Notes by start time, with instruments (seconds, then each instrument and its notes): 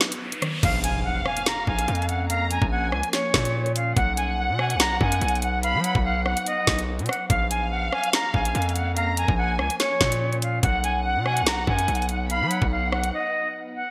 Already playing: synth pluck D#3 F#3 B3 D#4, ambient pad F#3 B3 D#4 B4, riser
0.01 snare
0.12 closed hi-hat
0.32 closed hi-hat
0.42 synth pluck D#3, cross-stick, closed hi-hat
0.63 808-style bass A#1, ambient pad F3 A#3 C#4 A#4, flute F5, violin section F5, kick, closed hi-hat, crash, impact
0.84 flute G#5, closed hi-hat
1.04 flute F#5
1.26 flute G#5, cross-stick
1.37 closed hi-hat
1.46 flute A#5, snare, closed hi-hat
1.67 808-style bass A#1, flute G#5, kick
1.79 closed hi-hat
1.88 808-style bass F2, closed hi-hat
1.95 closed hi-hat
2.02 closed hi-hat
2.09 flute F#5, closed hi-hat
2.29 flute F5, violin section A#5, closed hi-hat
2.51 flute G#5, closed hi-hat
2.62 808-style bass A#1, kick
2.71 flute F#5, violin section G#5
2.92 808-style bass C#2, flute G#5, cross-stick
3.03 closed hi-hat
3.13 flute C#5, snare, closed hi-hat
3.34 808-style bass A#2, kick, snare
3.45 closed hi-hat
3.66 closed hi-hat
3.76 flute F5, closed hi-hat, open hi-hat
3.96 808-style bass B1, ambient pad F#3 B3 D#4 B4, flute F#5, violin section F#5, kick, closed hi-hat
4.17 flute G#5, closed hi-hat
4.38 flute F#5
4.49 808-style bass B2
4.59 flute G#5, cross-stick
4.70 closed hi-hat
4.75 808-style bass B1
4.80 flute A#5, snare, closed hi-hat
5.01 808-style bass F#2, flute G#5, kick
5.12 closed hi-hat
5.21 808-style bass B1, closed hi-hat
5.28 closed hi-hat
5.35 closed hi-hat
5.42 flute F#5, closed hi-hat
5.63 flute F5, violin section B5, closed hi-hat
5.74 808-style bass F#3
5.84 flute F#5, closed hi-hat
5.95 808-style bass B1, kick
6.05 flute F5, violin section F#5
6.26 flute F#5, cross-stick
6.37 closed hi-hat
6.46 flute D#5, closed hi-hat
6.67 808-style bass B1, kick, snare
6.79 closed hi-hat
6.99 808-style bass B2, closed hi-hat
7.06 flute F#5, cross-stick, closed hi-hat
7.13 closed hi-hat
7.30 808-style bass A#1, ambient pad F3 A#3 C#4 A#4, flute F5, violin section F5, kick, closed hi-hat
7.50 flute G#5, closed hi-hat
7.71 flute F#5
7.93 flute G#5, cross-stick
8.04 closed hi-hat
8.13 flute A#5, snare, closed hi-hat
8.34 808-style bass A#1, flute G#5, kick
8.45 closed hi-hat
8.55 808-style bass F2, closed hi-hat
8.62 closed hi-hat
8.69 closed hi-hat
8.75 flute F#5, closed hi-hat
8.96 flute F5, violin section A#5, closed hi-hat
9.17 flute G#5, closed hi-hat
9.28 808-style bass A#1, kick
9.38 flute F#5, violin section G#5
9.59 808-style bass C#2, flute G#5, cross-stick
9.70 closed hi-hat
9.80 flute C#5, snare, closed hi-hat
10.01 808-style bass A#2, kick, snare
10.12 closed hi-hat
10.33 closed hi-hat
10.42 flute F5, closed hi-hat, open hi-hat
10.63 808-style bass B1, ambient pad F#3 B3 D#4 B4, flute F#5, violin section F#5, kick, closed hi-hat
10.84 flute G#5, closed hi-hat
11.05 flute F#5
11.16 808-style bass B2
11.25 flute G#5, cross-stick
11.37 closed hi-hat
11.42 808-style bass B1
11.46 flute A#5, snare, closed hi-hat
11.67 808-style bass F#2, flute G#5, kick
11.79 closed hi-hat
11.88 808-style bass B1, closed hi-hat
11.95 closed hi-hat
12.02 closed hi-hat
12.09 flute F#5, closed hi-hat
12.30 flute F5, violin section B5, closed hi-hat
12.41 808-style bass F#3
12.50 flute F#5, closed hi-hat
12.62 808-style bass B1, kick
12.71 flute F5, violin section F#5
12.92 flute F#5, cross-stick
13.04 closed hi-hat
13.14 flute D#5
13.75 flute F#5